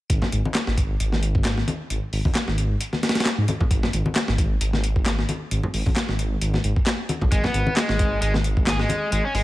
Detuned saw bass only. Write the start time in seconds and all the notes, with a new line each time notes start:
0.10 G#1
0.32 G#1
0.67 G#1
1.00 G#1
1.90 G#1
2.13 G#1
2.48 G#1
3.38 G#2
3.71 G#1
3.94 G#1
4.28 G#1
4.61 G#1
5.51 G#1
5.74 G#1
6.09 G#1
6.41 G#1
6.64 G#1
7.22 B1
7.32 G#1
7.54 G#1
7.89 G#1
8.22 G#1
9.12 G#1
9.34 G#1